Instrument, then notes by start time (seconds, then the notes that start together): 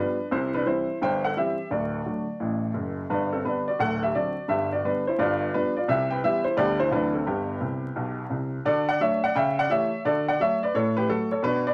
upright piano
Already playing: F3 G3 B3 B4
0.00 D4
0.31 C2 C3 E4 C5
0.54 D4 B4
0.66 E3 G3 C4 E4 C5
1.01 G1 G2 C5 G5
1.24 A4 F#5
1.37 E3 G3 C4 G4 E5
1.70 D1 D2 F#4 D5
2.06 D3 F#3 A3
2.40 A1 A2
2.74 F#1 F#2
3.10 G1 G2 D4 B4
3.33 C4 A4
3.44 D3 G3 B3 D4 B4
3.68 F#4 D5
3.79 D1 D2 A4 F#5
4.03 G4 E5
4.15 D3 F#3 C4 F#4 D5
4.48 G1 G2 G4 E5
4.72 F#4 D5
4.84 D3 G3 B3 D4 B4
5.07 E4 C5
5.18 G1 G2 F4 D5
5.54 F3 G3 B3 D4 B4
5.77 F4 D5
5.88 C2 C3 G4 E5
6.10 B4 G5
6.24 E3 G3 B3 G4 E5
6.44 E4 C5
6.56 D2 D3 G3 B3 G4 D5
6.80 E4 C5
6.91 D2 D3 E3 F#3 C4 D4 B4
7.14 C4 A4
7.26 G1 G2 B3 G4
7.60 C2 C3
7.96 B1 B2
8.30 C2 C3
8.65 D3 F#4 A4 D5
8.89 D5 F#5
9.00 F#3 A3 D4 C#5 E5
9.24 D5 F#5
9.35 C#3 E5 G5
9.59 D5 F#5
9.70 E3 A3 G4 C#5 E5
10.05 D3 F#4 A4 D5
10.28 D5 F#5
10.40 F#3 A3 F#4 C#5 E5
10.63 B4 D5
10.74 A2 A4 C#5
10.97 G4 B4
11.09 F#3 A3 F#4 A4
11.31 A4 C#5
11.43 B2 D4 F#4 B4
11.67 B4 D5